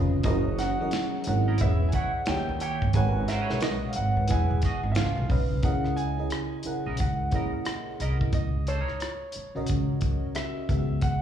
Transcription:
Already playing: upright bass F1, fm electric piano C#3 C#4 F4 B4 D#5
0.23 upright bass F#1, horn section D#3 F#3 C#4 F#4, fm electric piano E3 F#3 C#4 G#4 A#4 D#5, grand piano D#5, kick, closed hi-hat
0.59 grand piano F#5, snare, closed hi-hat
0.80 fm electric piano E3 F#3 C#4 G#4 A#4 D#5
0.91 finger snap, snare, closed hi-hat
1.24 upright bass G#1, fm electric piano F#3 C#4 E4, closed hi-hat
1.28 fm electric piano G#4 A#4 F#5
1.48 clean electric guitar E4 A#4 D#5
1.58 upright bass E1, horn section C#3 E3 B3 E4, fm electric piano E3 C#4 G#4, grand piano E5, kick, closed hi-hat
1.62 fm electric piano B4 D#5
1.89 grand piano G#5, closed hi-hat
1.93 upright bass E2, clean electric guitar E4 B4 C#5, grand piano F#5, kick
2.26 upright bass D#2, horn section A#2 D#3 G3 D#4, fm electric piano D#3 A#3 G4 C#5, grand piano G5, finger snap, snare, closed hi-hat
2.30 fm electric piano D#5
2.36 fm electric piano E5
2.49 upright bass D#2
2.60 clean electric guitar E4 G4 C#5, grand piano G5, closed hi-hat
2.82 upright bass G1, kick
2.93 upright bass G#1, horn section D#3 F#3 C#4 F#4, fm electric piano G#3 G#4 A#4 B4 C#5 F#5, grand piano G#5, kick, closed hi-hat
3.28 clean electric guitar F4 A#4 C5, grand piano E5, snare, closed hi-hat
3.42 clean electric guitar F#4 B4 C#5
3.49 upright bass B1, fm electric piano G#3 G#4 A#4 B4 C#5 F#5, snare
3.60 grand piano D#5, finger snap, snare, closed hi-hat
3.89 grand piano F5, closed hi-hat
3.96 upright bass G#1, grand piano F#5
4.16 upright bass G#2
4.28 horn section B2 E3 G#3 E4, fm electric piano E3 B3 G#4 D#5 F#5, grand piano G#5, kick, closed hi-hat
4.32 upright bass E1
4.50 upright bass E1
4.62 clean electric guitar F#4 G#4 D#5, kick, snare, closed hi-hat
4.83 upright bass G#1
4.92 horn section B2, grand piano E5, closed hi-hat
4.96 upright bass C#2, horn section F3 G#3 F4, grand piano F5, finger snap, snare
5.17 upright bass B1
5.29 upright bass B1, fm electric piano C#3 C#4 B4 D#5 F5, kick, open hi-hat
5.51 upright bass C2
5.63 upright bass C#2, fm electric piano C#3 C#4 E4 G#4 A#4 D#5, grand piano F#5, kick, closed hi-hat
5.85 cross-stick
5.96 grand piano G#5, closed hi-hat
6.18 fm electric piano C#3 C#4 E4 G#4 A#4 D#5
6.30 cross-stick, closed hi-hat
6.63 fm electric piano C#3 C#4 E4 G#4 A#4, muted upright bass stroke, closed hi-hat
6.67 fm electric piano F#5
6.86 upright bass A#1, clean electric guitar E4 A#4 D#5
6.97 upright bass C#2, grand piano F#5, kick, closed hi-hat
7.31 upright bass D#2, fm electric piano A#2 C#4 E4 G#4 A#4 D#5, clean electric guitar E4, kick, closed hi-hat
7.35 clean electric guitar A#4 D#5
7.65 cross-stick, closed hi-hat
8.00 upright bass C2, clean electric guitar E4 A#4 D#5, grand piano D#5, closed hi-hat
8.21 kick
8.33 upright bass C#2, grand piano D#5, kick, closed hi-hat
8.67 clean electric guitar D4 A4 C5, grand piano C#5, closed hi-hat
8.81 clean electric guitar D#4 A#4 C#5
8.88 muted upright bass stroke, cross-stick
9.00 cross-stick, closed hi-hat
9.32 muted upright bass stroke, closed hi-hat
9.55 upright bass A#1, fm electric piano C#3 C#4 F#4 A#4 D#5
9.67 upright bass C#2, kick, closed hi-hat
10.01 upright bass C#2, kick, closed hi-hat
10.35 grand piano E5, cross-stick, closed hi-hat
10.69 upright bass C#2, fm electric piano C#3 B3 F#4 G#4 E5, kick, closed hi-hat
11.01 grand piano F#5, kick, closed hi-hat

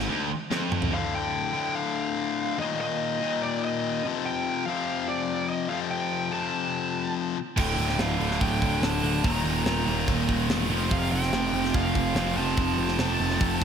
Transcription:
0.09 distorted electric guitar D2
0.51 distorted electric guitar F2, snare
0.72 mid tom
0.82 floor tom
0.91 distorted electric guitar D2 A2 D3, lead electric guitar F5
1.15 lead electric guitar G5
1.53 distorted electric guitar D2 A2 D3
1.75 lead electric guitar F5
2.58 distorted electric guitar D#2 A#2 D#3, lead electric guitar D#5
2.81 lead electric guitar D#5
3.21 distorted electric guitar D#2 A#2 D#3
3.43 lead electric guitar D5
3.65 lead electric guitar D#5
4.03 distorted electric guitar F2 C3 F3
4.26 lead electric guitar G5
4.66 distorted electric guitar F2 C3 F3, lead electric guitar F5
5.09 lead electric guitar D5
5.50 lead electric guitar D#5
5.69 distorted electric guitar F2 C3 F3, lead electric guitar F5
5.91 lead electric guitar G5
6.31 distorted electric guitar F2 C3 F3, lead electric guitar A5
7.56 picked electric bass D1, distorted electric guitar D2 A2 D3, lead electric guitar G5, kick, crash
7.78 picked electric bass D1, open hi-hat
7.89 snare
7.99 picked electric bass D1, lead electric guitar F5, snare, open hi-hat
8.19 picked electric bass D1, distorted electric guitar D2 A2 D3, open hi-hat
8.31 snare
8.41 picked electric bass D1, lead electric guitar G5, kick, open hi-hat
8.62 picked electric bass D1, kick, open hi-hat
8.82 picked electric bass D1, lead electric guitar A5, snare, open hi-hat
9.02 picked electric bass D1, distorted electric guitar D2 A2 D3, open hi-hat
9.23 picked electric bass D#1, distorted electric guitar D#2 A#2 D#3, lead electric guitar A#5, kick, open hi-hat
9.44 picked electric bass D#1, open hi-hat
9.66 picked electric bass D#1, snare, open hi-hat
9.86 picked electric bass D#1, distorted electric guitar D#2 A#2 D#3, open hi-hat
10.08 picked electric bass D#1, kick, open hi-hat
10.29 picked electric bass D#1, kick, open hi-hat
10.49 picked electric bass E1, snare, open hi-hat
10.69 picked electric bass F1, distorted electric guitar F2 C3 F3, open hi-hat
10.91 picked electric bass F1, lead electric guitar F5, kick, open hi-hat
11.12 picked electric bass F1, lead electric guitar G5, open hi-hat
11.23 snare
11.32 picked electric bass F1, distorted electric guitar F2 C3 F3, snare, open hi-hat
11.53 picked electric bass F1, open hi-hat
11.64 snare
11.74 picked electric bass F1, lead electric guitar F5, kick, open hi-hat
11.95 picked electric bass F1, kick, open hi-hat
12.15 picked electric bass F1, distorted electric guitar F2 C3 F3, snare, open hi-hat
12.36 picked electric bass F1, distorted electric guitar F2 C3 F3, lead electric guitar A5, open hi-hat
12.57 picked electric bass F1, kick, open hi-hat
12.77 picked electric bass F1, open hi-hat
12.88 snare
12.98 picked electric bass F1, distorted electric guitar F2 C3 F3, snare, open hi-hat
13.20 picked electric bass F1, open hi-hat
13.30 snare
13.41 picked electric bass F1, kick, open hi-hat
13.61 open hi-hat

